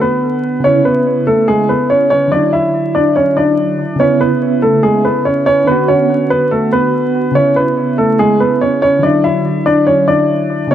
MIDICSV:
0, 0, Header, 1, 3, 480
1, 0, Start_track
1, 0, Tempo, 419580
1, 730, Time_signature, 4, 2, 24, 8
1, 12295, End_track
2, 0, Start_track
2, 0, Title_t, "Grand piano"
2, 0, Program_c, 0, 0
2, 15, Note_on_c, 0, 71, 81
2, 23, Note_on_c, 0, 59, 64
2, 689, Note_off_c, 0, 71, 0
2, 694, Note_off_c, 0, 59, 0
2, 734, Note_on_c, 0, 73, 92
2, 743, Note_on_c, 0, 61, 72
2, 955, Note_off_c, 0, 73, 0
2, 959, Note_off_c, 0, 61, 0
2, 974, Note_on_c, 0, 71, 85
2, 983, Note_on_c, 0, 59, 67
2, 1423, Note_off_c, 0, 71, 0
2, 1428, Note_off_c, 0, 59, 0
2, 1451, Note_on_c, 0, 69, 85
2, 1460, Note_on_c, 0, 57, 66
2, 1673, Note_off_c, 0, 69, 0
2, 1677, Note_off_c, 0, 57, 0
2, 1691, Note_on_c, 0, 68, 94
2, 1700, Note_on_c, 0, 56, 68
2, 1913, Note_off_c, 0, 68, 0
2, 1918, Note_off_c, 0, 56, 0
2, 1933, Note_on_c, 0, 71, 80
2, 1941, Note_on_c, 0, 59, 62
2, 2154, Note_off_c, 0, 71, 0
2, 2158, Note_off_c, 0, 59, 0
2, 2171, Note_on_c, 0, 73, 85
2, 2179, Note_on_c, 0, 61, 62
2, 2388, Note_off_c, 0, 73, 0
2, 2397, Note_off_c, 0, 61, 0
2, 2405, Note_on_c, 0, 73, 98
2, 2415, Note_on_c, 0, 61, 66
2, 2630, Note_off_c, 0, 73, 0
2, 2635, Note_off_c, 0, 61, 0
2, 2651, Note_on_c, 0, 74, 86
2, 2660, Note_on_c, 0, 62, 65
2, 2873, Note_off_c, 0, 74, 0
2, 2878, Note_off_c, 0, 62, 0
2, 2892, Note_on_c, 0, 76, 82
2, 2901, Note_on_c, 0, 64, 63
2, 3342, Note_off_c, 0, 76, 0
2, 3347, Note_off_c, 0, 64, 0
2, 3372, Note_on_c, 0, 74, 85
2, 3381, Note_on_c, 0, 62, 68
2, 3593, Note_off_c, 0, 74, 0
2, 3598, Note_off_c, 0, 62, 0
2, 3611, Note_on_c, 0, 73, 73
2, 3620, Note_on_c, 0, 61, 65
2, 3833, Note_off_c, 0, 73, 0
2, 3837, Note_off_c, 0, 61, 0
2, 3850, Note_on_c, 0, 74, 80
2, 3860, Note_on_c, 0, 62, 60
2, 4527, Note_off_c, 0, 74, 0
2, 4532, Note_off_c, 0, 62, 0
2, 4573, Note_on_c, 0, 73, 89
2, 4583, Note_on_c, 0, 61, 72
2, 4794, Note_off_c, 0, 73, 0
2, 4799, Note_off_c, 0, 61, 0
2, 4812, Note_on_c, 0, 71, 79
2, 4821, Note_on_c, 0, 59, 67
2, 5263, Note_off_c, 0, 71, 0
2, 5267, Note_off_c, 0, 59, 0
2, 5288, Note_on_c, 0, 69, 82
2, 5299, Note_on_c, 0, 57, 63
2, 5511, Note_off_c, 0, 69, 0
2, 5517, Note_off_c, 0, 57, 0
2, 5526, Note_on_c, 0, 68, 90
2, 5535, Note_on_c, 0, 56, 61
2, 5750, Note_off_c, 0, 68, 0
2, 5755, Note_off_c, 0, 56, 0
2, 5772, Note_on_c, 0, 71, 79
2, 5781, Note_on_c, 0, 59, 68
2, 5993, Note_off_c, 0, 71, 0
2, 5998, Note_off_c, 0, 59, 0
2, 6008, Note_on_c, 0, 73, 82
2, 6018, Note_on_c, 0, 61, 63
2, 6231, Note_off_c, 0, 73, 0
2, 6236, Note_off_c, 0, 61, 0
2, 6248, Note_on_c, 0, 73, 101
2, 6257, Note_on_c, 0, 61, 77
2, 6471, Note_off_c, 0, 73, 0
2, 6476, Note_off_c, 0, 61, 0
2, 6490, Note_on_c, 0, 71, 88
2, 6498, Note_on_c, 0, 59, 65
2, 6712, Note_off_c, 0, 71, 0
2, 6717, Note_off_c, 0, 59, 0
2, 6731, Note_on_c, 0, 73, 89
2, 6740, Note_on_c, 0, 61, 64
2, 7182, Note_off_c, 0, 73, 0
2, 7186, Note_off_c, 0, 61, 0
2, 7212, Note_on_c, 0, 71, 91
2, 7221, Note_on_c, 0, 59, 70
2, 7433, Note_off_c, 0, 71, 0
2, 7438, Note_off_c, 0, 59, 0
2, 7451, Note_on_c, 0, 69, 82
2, 7460, Note_on_c, 0, 57, 66
2, 7673, Note_off_c, 0, 69, 0
2, 7678, Note_off_c, 0, 57, 0
2, 7693, Note_on_c, 0, 71, 88
2, 7702, Note_on_c, 0, 59, 63
2, 8368, Note_off_c, 0, 71, 0
2, 8373, Note_off_c, 0, 59, 0
2, 8410, Note_on_c, 0, 73, 96
2, 8419, Note_on_c, 0, 61, 71
2, 8633, Note_off_c, 0, 73, 0
2, 8637, Note_off_c, 0, 61, 0
2, 8651, Note_on_c, 0, 71, 86
2, 8661, Note_on_c, 0, 59, 64
2, 9102, Note_off_c, 0, 71, 0
2, 9107, Note_off_c, 0, 59, 0
2, 9129, Note_on_c, 0, 69, 83
2, 9139, Note_on_c, 0, 57, 68
2, 9352, Note_off_c, 0, 69, 0
2, 9357, Note_off_c, 0, 57, 0
2, 9372, Note_on_c, 0, 68, 98
2, 9381, Note_on_c, 0, 56, 70
2, 9593, Note_off_c, 0, 68, 0
2, 9598, Note_off_c, 0, 56, 0
2, 9613, Note_on_c, 0, 71, 82
2, 9623, Note_on_c, 0, 59, 64
2, 9834, Note_off_c, 0, 71, 0
2, 9839, Note_off_c, 0, 59, 0
2, 9853, Note_on_c, 0, 73, 88
2, 9863, Note_on_c, 0, 61, 64
2, 10073, Note_off_c, 0, 73, 0
2, 10079, Note_off_c, 0, 61, 0
2, 10090, Note_on_c, 0, 73, 100
2, 10099, Note_on_c, 0, 61, 72
2, 10312, Note_off_c, 0, 73, 0
2, 10317, Note_off_c, 0, 61, 0
2, 10331, Note_on_c, 0, 74, 87
2, 10341, Note_on_c, 0, 62, 67
2, 10553, Note_off_c, 0, 74, 0
2, 10558, Note_off_c, 0, 62, 0
2, 10570, Note_on_c, 0, 76, 87
2, 10580, Note_on_c, 0, 64, 64
2, 11021, Note_off_c, 0, 76, 0
2, 11027, Note_off_c, 0, 64, 0
2, 11050, Note_on_c, 0, 74, 86
2, 11059, Note_on_c, 0, 62, 69
2, 11272, Note_off_c, 0, 74, 0
2, 11277, Note_off_c, 0, 62, 0
2, 11288, Note_on_c, 0, 73, 77
2, 11297, Note_on_c, 0, 61, 66
2, 11511, Note_off_c, 0, 73, 0
2, 11516, Note_off_c, 0, 61, 0
2, 11528, Note_on_c, 0, 74, 84
2, 11538, Note_on_c, 0, 62, 63
2, 12206, Note_off_c, 0, 74, 0
2, 12211, Note_off_c, 0, 62, 0
2, 12250, Note_on_c, 0, 73, 92
2, 12259, Note_on_c, 0, 61, 69
2, 12295, Note_off_c, 0, 61, 0
2, 12295, Note_off_c, 0, 73, 0
2, 12295, End_track
3, 0, Start_track
3, 0, Title_t, "Synth keys"
3, 0, Program_c, 1, 88
3, 0, Control_c, 1, 64, 127
3, 0, Note_on_c, 1, 50, 67
3, 0, Note_on_c, 1, 59, 63
3, 0, Note_on_c, 1, 66, 75
3, 676, Note_off_c, 1, 50, 0
3, 688, Note_on_c, 1, 49, 74
3, 696, Note_off_c, 1, 59, 0
3, 717, Note_off_c, 1, 66, 0
3, 728, Note_on_c, 1, 59, 65
3, 744, Control_c, 1, 64, 0
3, 767, Note_on_c, 1, 64, 71
3, 963, Control_c, 1, 64, 127
3, 2590, Note_off_c, 1, 49, 0
3, 2606, Note_on_c, 1, 50, 69
3, 2610, Note_off_c, 1, 59, 0
3, 2631, Note_off_c, 1, 64, 0
3, 2645, Note_on_c, 1, 54, 60
3, 2668, Control_c, 1, 64, 0
3, 2685, Note_on_c, 1, 64, 76
3, 2850, Control_c, 1, 64, 127
3, 3804, Note_off_c, 1, 50, 0
3, 3824, Note_off_c, 1, 54, 0
3, 3834, Note_on_c, 1, 50, 48
3, 3844, Note_off_c, 1, 64, 0
3, 3855, Note_on_c, 1, 54, 46
3, 3874, Note_on_c, 1, 64, 59
3, 4528, Note_on_c, 1, 49, 76
3, 4562, Note_off_c, 1, 50, 0
3, 4567, Note_on_c, 1, 59, 67
3, 4572, Note_off_c, 1, 54, 0
3, 4582, Note_off_c, 1, 64, 0
3, 4582, Control_c, 1, 64, 0
3, 4608, Note_on_c, 1, 64, 77
3, 4760, Control_c, 1, 64, 127
3, 6430, Note_off_c, 1, 49, 0
3, 6450, Note_off_c, 1, 59, 0
3, 6457, Note_on_c, 1, 50, 68
3, 6471, Note_off_c, 1, 64, 0
3, 6497, Note_on_c, 1, 59, 65
3, 6504, Control_c, 1, 64, 0
3, 6537, Note_on_c, 1, 66, 82
3, 6683, Control_c, 1, 64, 127
3, 8355, Note_off_c, 1, 50, 0
3, 8368, Note_on_c, 1, 49, 75
3, 8375, Note_off_c, 1, 59, 0
3, 8396, Note_off_c, 1, 66, 0
3, 8408, Note_on_c, 1, 59, 66
3, 8427, Control_c, 1, 64, 0
3, 8448, Note_on_c, 1, 64, 72
3, 8630, Control_c, 1, 64, 127
3, 10270, Note_off_c, 1, 49, 0
3, 10286, Note_on_c, 1, 50, 72
3, 10291, Note_off_c, 1, 59, 0
3, 10311, Note_off_c, 1, 64, 0
3, 10326, Note_on_c, 1, 54, 62
3, 10345, Control_c, 1, 64, 0
3, 10365, Note_on_c, 1, 64, 77
3, 10517, Control_c, 1, 64, 127
3, 11484, Note_off_c, 1, 50, 0
3, 11504, Note_off_c, 1, 54, 0
3, 11514, Note_on_c, 1, 50, 49
3, 11524, Note_off_c, 1, 64, 0
3, 11534, Note_on_c, 1, 54, 48
3, 11554, Note_on_c, 1, 64, 60
3, 12208, Note_on_c, 1, 49, 74
3, 12242, Note_off_c, 1, 50, 0
3, 12248, Note_on_c, 1, 59, 67
3, 12252, Note_off_c, 1, 54, 0
3, 12262, Note_off_c, 1, 64, 0
3, 12264, Control_c, 1, 64, 0
3, 12295, Note_off_c, 1, 49, 0
3, 12295, Note_off_c, 1, 59, 0
3, 12295, End_track
0, 0, End_of_file